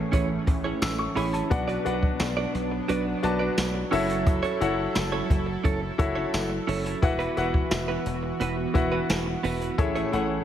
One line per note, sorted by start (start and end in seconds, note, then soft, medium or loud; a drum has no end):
0.00 1.53 A2 medium
0.00 1.48 E3 medium
0.00 1.48 A3 medium
0.00 1.48 C#4 medium
0.00 1.53 E4 medium
0.00 1.53 G#4 medium
0.00 1.53 A4 medium
0.00 1.52 C#5 medium
0.00 1.52 E5 medium
0.00 1.51 F#5 medium
0.12 0.38 A1 loud
0.12 0.30 C#4 medium
0.12 0.30 E4 medium
0.12 0.29 G#4 medium
0.12 0.28 C#5 medium
0.12 kick medium
0.12 closed hi-hat medium
0.29 muted clean electric guitar stroke soft
0.47 0.72 A1 loud
0.47 muted clean electric guitar stroke soft
0.47 kick loud
0.47 closed hi-hat medium
0.64 0.79 C#4 medium
0.64 0.79 E4 medium
0.64 0.79 G#4 medium
0.64 0.78 C#5 medium
0.81 1.07 A1 loud
0.81 0.98 E6 medium
0.81 muted clean electric guitar stroke soft
0.81 snare loud
0.81 closed hi-hat medium
0.81 tambourine medium
0.99 1.15 C#6 medium
0.99 muted clean electric guitar stroke soft
1.15 1.41 A1 loud
1.15 1.34 C#4 medium
1.15 1.33 E4 medium
1.15 1.33 G#4 medium
1.15 1.32 C#5 medium
1.15 1.32 B5 medium
1.15 open hi-hat medium
1.33 1.48 C#4 soft
1.33 1.48 E4 medium
1.33 1.48 G#4 medium
1.33 1.47 C#5 medium
1.33 1.66 A5 medium
1.33 closed hi-hat medium
1.50 1.76 B1 loud
1.50 2.50 B2 medium
1.50 6.99 F#3 medium
1.50 3.90 B3 medium
1.50 1.71 D4 medium
1.50 3.90 D4 loud
1.50 1.72 F#4 medium
1.50 1.72 B4 medium
1.50 1.72 D5 medium
1.50 1.72 F#5 medium
1.50 muted clean electric guitar stroke soft
1.50 kick loud
1.50 closed hi-hat medium
1.68 1.84 D4 medium
1.68 1.85 F#4 medium
1.68 1.85 B4 medium
1.68 1.86 D5 medium
1.68 closed hi-hat medium
1.85 2.10 B1 loud
1.85 2.69 D4 medium
1.85 1.99 D4 medium
1.85 2.69 F#4 medium
1.85 1.99 F#4 medium
1.85 2.69 B4 medium
1.85 2.00 B4 medium
1.85 2.70 D5 medium
1.85 2.00 D5 medium
1.85 2.70 F#5 medium
1.85 closed hi-hat medium
2.03 kick medium
2.20 2.45 B1 loud
2.20 muted clean electric guitar stroke soft
2.20 snare loud
2.20 closed hi-hat medium
2.20 tambourine medium
2.37 2.53 D4 medium
2.37 2.53 F#4 medium
2.37 2.54 B4 medium
2.37 2.54 D5 medium
2.54 2.79 B1 loud
2.54 muted clean electric guitar stroke soft
2.54 closed hi-hat medium
2.72 muted clean electric guitar stroke soft
2.88 3.14 B1 loud
2.88 3.06 D4 loud
2.88 3.06 F#4 medium
2.88 3.05 B4 loud
2.88 3.05 D5 medium
2.88 closed hi-hat medium
3.06 muted clean electric guitar stroke soft
3.23 3.48 B1 loud
3.23 3.86 D4 medium
3.23 3.86 F#4 medium
3.23 3.86 B4 medium
3.23 3.87 D5 medium
3.23 3.87 A5 medium
3.23 muted clean electric guitar stroke soft
3.23 closed hi-hat medium
3.39 3.55 D4 medium
3.39 3.55 F#4 medium
3.39 3.54 B4 medium
3.39 3.54 D5 medium
3.57 3.83 B1 loud
3.57 muted clean electric guitar stroke soft
3.57 snare loud
3.57 closed hi-hat medium
3.57 tambourine medium
3.74 muted clean electric guitar stroke soft
3.91 4.42 F#1 loud
3.91 4.09 C#4 medium
3.91 4.47 E4 medium
3.91 4.08 E4 medium
3.91 6.99 E4 medium
3.91 4.47 F#4 medium
3.91 6.99 A4 medium
3.91 4.47 A4 medium
3.91 4.08 A4 medium
3.91 4.47 C#5 medium
3.91 4.07 C#5 medium
3.91 4.47 E5 loud
3.91 open hi-hat medium
4.08 4.24 C#4 medium
4.08 4.23 E4 medium
4.08 4.23 A4 medium
4.08 4.23 C#5 medium
4.08 closed hi-hat medium
4.26 kick loud
4.26 closed hi-hat medium
4.43 4.59 C#4 medium
4.43 4.60 E4 medium
4.43 4.60 A4 medium
4.43 4.61 C#5 loud
4.43 closed hi-hat soft
4.60 4.86 F#1 medium
4.60 4.75 C#4 medium
4.60 5.45 E4 medium
4.60 4.75 E4 medium
4.60 5.45 F#4 medium
4.60 5.45 A4 medium
4.60 4.75 A4 medium
4.60 5.46 C#5 medium
4.60 4.75 C#5 medium
4.60 5.46 F#5 medium
4.60 closed hi-hat medium
4.78 muted clean electric guitar stroke soft
4.95 5.21 F#1 loud
4.95 muted clean electric guitar stroke soft
4.95 snare loud
4.95 closed hi-hat medium
4.95 tambourine medium
5.12 5.28 C#4 medium
5.12 5.29 E4 medium
5.12 5.29 A4 medium
5.12 5.29 C#5 medium
5.29 5.55 F#1 loud
5.29 muted clean electric guitar stroke soft
5.29 kick medium
5.29 closed hi-hat medium
5.46 muted clean electric guitar stroke soft
5.64 5.89 F#1 loud
5.64 5.82 C#4 medium
5.64 5.81 E4 medium
5.64 5.81 A4 loud
5.64 5.80 C#5 medium
5.64 kick medium
5.64 closed hi-hat medium
5.81 muted clean electric guitar stroke soft
5.98 6.24 F#1 loud
5.98 6.62 E4 medium
5.98 6.62 F#4 medium
5.98 6.62 A4 medium
5.98 6.62 C#5 medium
5.98 6.62 E5 medium
5.98 muted clean electric guitar stroke soft
5.98 kick loud
5.98 closed hi-hat medium
6.15 6.31 C#4 medium
6.15 6.30 E4 medium
6.15 6.30 A4 medium
6.15 6.30 C#5 medium
6.33 6.59 F#1 medium
6.33 muted clean electric guitar stroke soft
6.33 snare loud
6.33 closed hi-hat medium
6.33 tambourine medium
6.50 muted clean electric guitar stroke soft
6.67 6.93 F#1 loud
6.67 6.85 C#4 medium
6.67 6.84 E4 medium
6.67 6.84 A4 medium
6.67 6.83 C#5 medium
6.67 open hi-hat medium
6.84 7.00 C#4 medium
6.84 6.99 E4 medium
6.84 6.99 A4 medium
6.84 6.99 C#5 medium
6.84 closed hi-hat medium
7.02 7.27 E1 loud
7.02 8.02 E3 medium
7.02 9.76 E3 medium
7.02 9.76 B3 medium
7.02 7.23 E4 medium
7.02 7.24 F#4 medium
7.02 9.76 F#4 medium
7.02 7.24 B4 medium
7.02 7.24 E5 medium
7.02 7.24 F#5 medium
7.02 muted clean electric guitar stroke soft
7.02 kick loud
7.02 closed hi-hat medium
7.19 7.36 B3 medium
7.19 7.36 E4 medium
7.19 7.36 F#4 medium
7.19 7.37 B4 medium
7.19 closed hi-hat medium
7.37 7.62 E1 medium
7.37 7.51 B3 medium
7.37 8.21 E4 medium
7.37 7.51 E4 medium
7.37 8.21 F#4 medium
7.37 7.51 F#4 medium
7.37 8.21 B4 medium
7.37 7.52 B4 medium
7.37 8.22 E5 medium
7.37 8.22 F#5 medium
7.37 closed hi-hat medium
7.54 muted clean electric guitar stroke medium
7.54 kick loud
7.71 7.96 E1 loud
7.71 muted clean electric guitar stroke soft
7.71 snare loud
7.71 closed hi-hat medium
7.71 tambourine medium
7.88 8.04 B3 medium
7.88 8.05 E4 medium
7.88 8.05 F#4 medium
7.88 8.06 B4 medium
8.06 8.31 E1 loud
8.06 muted clean electric guitar stroke soft
8.06 closed hi-hat medium
8.23 muted clean electric guitar stroke soft
8.40 8.65 E1 loud
8.40 8.58 B3 medium
8.40 8.57 E4 medium
8.40 8.57 F#4 medium
8.40 8.56 B4 loud
8.40 closed hi-hat medium
8.58 muted clean electric guitar stroke soft
8.74 9.00 E1 loud
8.74 9.38 E4 medium
8.74 9.38 F#4 medium
8.74 9.38 B4 medium
8.74 9.38 E5 medium
8.74 9.38 F#5 medium
8.74 muted clean electric guitar stroke soft
8.74 kick loud
8.74 closed hi-hat medium
8.92 9.07 B3 medium
8.92 9.07 E4 medium
8.92 9.06 F#4 medium
8.92 9.06 B4 medium
9.09 9.35 E1 loud
9.09 muted clean electric guitar stroke soft
9.09 snare loud
9.09 closed hi-hat medium
9.09 tambourine medium
9.26 muted clean electric guitar stroke soft
9.43 9.69 E1 medium
9.43 9.61 B3 medium
9.43 9.61 E4 medium
9.43 9.60 F#4 loud
9.43 9.60 B4 loud
9.43 open hi-hat medium
9.61 9.76 B3 medium
9.61 9.76 E4 medium
9.61 9.75 F#4 medium
9.61 9.75 B4 medium
9.61 closed hi-hat medium
9.78 10.03 A1 loud
9.78 10.44 A2 medium
9.78 10.44 E3 medium
9.78 10.44 A3 medium
9.78 10.44 C#4 loud
9.78 9.99 E4 medium
9.78 9.99 G#4 medium
9.78 10.00 A4 medium
9.78 10.00 C#5 medium
9.78 10.00 E5 medium
9.78 kick loud
9.78 closed hi-hat medium
9.96 10.11 A3 medium
9.96 10.12 E4 medium
9.96 10.13 G#4 medium
9.96 10.13 C#5 medium
9.96 closed hi-hat medium
10.12 10.38 A1 loud
10.12 10.27 A3 medium
10.12 10.44 E4 medium
10.12 10.27 E4 medium
10.12 10.44 G#4 medium
10.12 10.27 G#4 medium
10.12 10.44 A4 medium
10.12 10.44 C#5 medium
10.12 10.28 C#5 medium
10.12 10.44 F#5 medium
10.12 closed hi-hat medium
10.30 muted clean electric guitar stroke soft